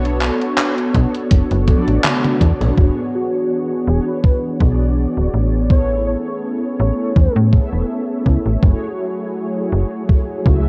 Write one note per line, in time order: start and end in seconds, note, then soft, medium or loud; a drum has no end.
0.00 0.31 B1 medium
0.00 0.90 B3 loud
0.00 0.90 D4 medium
0.00 0.91 F#4 medium
0.00 0.91 A4 medium
0.00 0.92 C#5 loud
0.05 closed hi-hat soft
0.22 clap medium
0.22 closed hi-hat soft
0.42 closed hi-hat soft
0.58 clap loud
0.58 closed hi-hat medium
0.78 closed hi-hat soft
0.94 1.07 B1 loud
0.94 1.63 B3 medium
0.94 1.64 D4 medium
0.94 1.64 F#4 medium
0.94 1.64 A4 medium
0.94 1.64 C#5 medium
0.94 kick medium
0.94 closed hi-hat medium
1.15 closed hi-hat soft
1.31 1.43 F#1 medium
1.31 kick loud
1.31 closed hi-hat medium
1.51 1.74 F#1 medium
1.51 closed hi-hat soft
1.66 2.73 B3 medium
1.66 2.73 D4 medium
1.66 2.73 F#4 medium
1.66 2.74 A4 medium
1.66 2.74 D5 loud
1.66 kick loud
1.66 closed hi-hat medium
1.66 high tom medium
1.88 1.99 A1 medium
1.88 closed hi-hat soft
2.04 clap loud
2.04 closed hi-hat medium
2.04 mid tom medium
2.24 closed hi-hat soft
2.24 mid tom medium
2.41 2.53 E2 medium
2.41 kick medium
2.41 closed hi-hat medium
2.61 2.72 B1 medium
2.61 closed hi-hat soft
2.61 mid tom medium
2.76 2.90 E1 medium
2.76 5.67 E3 medium
2.76 3.83 B3 medium
2.76 3.83 D4 medium
2.76 5.67 D4 medium
2.76 3.83 F#4 medium
2.76 3.84 G#4 medium
2.76 3.84 C#5 loud
2.76 kick loud
3.14 3.59 F#4 medium
3.87 3.99 E1 loud
3.87 4.56 B3 medium
3.87 4.56 D4 medium
3.87 4.56 F#4 medium
3.87 4.03 G#4 medium
3.87 4.57 G#4 medium
3.87 4.57 C#5 medium
4.07 4.51 B4 loud
4.24 kick loud
4.59 5.06 B1 loud
4.59 5.65 B3 medium
4.59 5.66 D4 medium
4.59 5.66 F#4 medium
4.59 5.67 G#4 medium
4.59 5.67 D5 loud
4.59 kick loud
5.17 5.28 D1 medium
5.34 6.16 A1 medium
5.69 8.60 A3 medium
5.69 6.75 B3 medium
5.69 8.60 C#4 medium
5.69 6.76 E4 medium
5.69 6.76 G#4 medium
5.69 6.76 A4 medium
5.69 6.04 C#5 medium
5.69 6.77 C#5 loud
5.69 kick loud
6.07 6.20 C#5 medium
6.27 6.38 C#5 medium
6.79 6.92 A1 medium
6.79 7.49 B3 medium
6.79 7.49 E4 medium
6.79 7.49 G#4 medium
6.79 7.49 A4 medium
6.79 7.37 C#5 medium
6.79 7.50 C#5 medium
7.16 7.29 E2 medium
7.16 kick loud
7.36 7.60 A2 medium
7.52 8.58 B3 medium
7.52 8.58 E4 medium
7.52 8.59 G#4 medium
7.52 8.59 A4 medium
7.52 8.60 E5 loud
7.52 kick loud
7.73 7.84 E1 medium
8.26 8.38 C#2 medium
8.26 kick medium
8.46 8.57 A1 medium
8.61 8.75 F#1 medium
8.61 10.69 F#3 medium
8.61 9.68 A3 medium
8.61 10.69 A3 medium
8.61 9.68 E4 medium
8.61 10.69 E4 medium
8.61 9.69 F#4 medium
8.61 10.69 G#4 medium
8.61 9.69 G#4 medium
8.61 9.69 C#5 loud
8.61 kick loud
9.72 9.85 F#1 medium
9.72 10.41 A3 medium
9.72 10.41 E4 medium
9.72 10.42 F#4 medium
9.72 10.42 G#4 medium
9.72 10.42 C#5 medium
10.09 kick loud
10.44 10.69 C#2 medium
10.44 10.69 A3 medium
10.44 10.69 E4 medium
10.44 10.69 F#4 medium
10.44 10.69 G#4 medium
10.44 10.69 E5 medium
10.44 kick loud